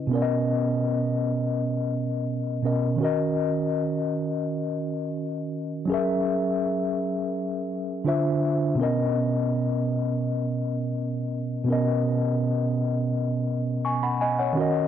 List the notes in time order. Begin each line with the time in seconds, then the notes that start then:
0.07 B2 B3
0.11 C#4 A#4
0.15 D5
0.22 D#5
2.62 B2 B3 C#4 A#4
2.66 D#5
2.96 D#3 C#4
3.00 F#4 A#4
3.05 D#5
5.85 F#3 C#4
5.90 G#4 A#4
5.94 E5
8.04 D3 D4 F4 C5 E5
8.75 B2 B3
8.79 C#4 A#4
8.83 D#5
11.64 B2 B3
11.68 C#4 A#4
11.72 D#5
13.85 G#5 C#6
14.03 F#5 B5
14.21 D#5 G#5
14.39 C#5 F#5
14.53 D#3 C#4
14.57 F#4 A#4
14.61 D#5